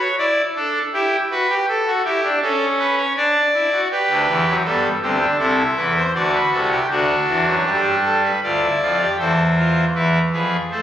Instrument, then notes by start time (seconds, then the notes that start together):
pipe organ
0.00 C#5
0.18 E4 D5
0.55 D4 A4
0.93 E4 G4
1.31 F#4 B4
1.50 G4
1.68 A4
1.87 F#4
2.05 E4 G4
2.24 D4
2.42 C#4 A4
2.79 B4
2.98 C#5
3.16 D4 D5
3.54 E4
3.72 F#4
3.91 G4 B4
4.10 D2 D3
4.28 E2 E3
4.46 F#2 F#3
4.65 G2 G3 B3 A4
5.02 D2 D3 C4 G4
5.21 D4
5.39 C2 C3 E4 A4
5.77 E2 E3 B4
5.96 C5
6.14 D2 D3 F#4 D5
6.33 B4
6.52 C2 C3 A4
6.71 G4
6.90 D2 D3 D4 F#4
7.28 E2 E3
7.46 F#2 F#3
7.65 G2 G3 G4
7.73 A4
7.80 G4
8.04 A4
8.23 B4
8.43 D2 D3 F4 D5
8.62 E4
8.81 F2 F3 F4
9.01 G4
9.19 E2 E3 A4 C5
9.57 F4
9.95 E2 E3 E4 B4
10.33 F2 F3 G#4 B4
10.71 A3 A4 C5